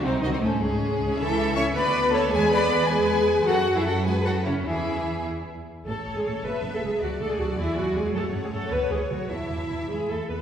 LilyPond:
<<
  \new Staff \with { instrumentName = "Violin section" } { \time 6/8 \key cis \phrygian \tempo 4. = 104 c''8 ees''16 c''16 a'8 gis'4. | \key e \mixolydian e''4 cis'''8 b''4 a''8 | gis''8 b''4 gis''4. | fis''8. e''16 fis''8 gis''8 fis''8 cis''8 |
e''4. r4. | a''8 a''8 a''8 a''8 a''8 a''8 | a''8 a''8 a''8 gis''8 gis''8 gis''8 | fis''8 fis''8 fis''8 fis''8 fis''8 fis''8 |
a''8 a''8 a''8 b''8 b''8 b''8 | }
  \new Staff \with { instrumentName = "Violin section" } { \time 6/8 \key cis \phrygian ees'8 ges'16 ees'16 cis'8 cis'4. | \key e \mixolydian a'4 e''8 d''4 cis''8 | b'8 d''4 b'4. | a'8. gis'16 a'8 b'8 a'8 e'8 |
gis'4. r4. | cis''4. e''4. | d''2. | cis''2. |
e''2~ e''16 r8. | }
  \new Staff \with { instrumentName = "Viola section" } { \time 6/8 \key cis \phrygian c'8 ees'16 c'16 a8 gis4. | \key e \mixolydian e'4 cis''8 b'4 a'8 | gis'8 b'4 gis'4. | fis'8. e'16 fis'8 gis'8 fis'8 cis'8 |
e'4. r4. | a'8. gis'16 a'8 b'8. a'16 gis'8 | fis'8 a'16 gis'16 fis'8 e'8 fis'8 gis'8 | a'8. gis'16 a'8 b'8 gis'8 fis'8 |
e'4. gis'8 a'8 b'8 | }
  \new Staff \with { instrumentName = "Cello section" } { \clef bass \time 6/8 \key cis \phrygian c8 ees16 c16 a,8 gis,4. | \key e \mixolydian e4 cis'8 b4 a8 | gis8 b4 gis4. | fis8. e16 fis8 gis8 fis8 cis8 |
e4. r4. | a8. gis16 a8 b8. a16 gis8 | fis8 a16 gis16 fis8 e8 fis8 gis8 | a8. gis16 a8 b8 gis8 fis8 |
e4. gis8 a8 b8 | }
  \new Staff \with { instrumentName = "Double bass section" } { \clef bass \time 6/8 \key cis \phrygian c,8 c,8 c,8 cis,8 cis,8 cis,8 | \key e \mixolydian cis,4. d,4. | e,2. | fis,2. |
e,2~ e,8 r8 | a,,8 a,,8 a,,8 fis,,8 fis,,8 fis,,8 | d,8 d,8 d,8 e,8 e,8 e,8 | fis,8 fis,8 fis,8 d,8 d,8 d,8 |
e,8 e,8 e,8 e,8 e,8 e,8 | }
>>